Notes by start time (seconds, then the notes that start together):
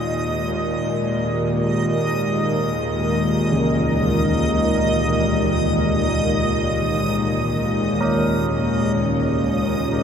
Already playing: D#2 A#2 D#3 G#3 F#4 A#4 D#5
3.52 C#3
7.34 C#4
8.01 A#4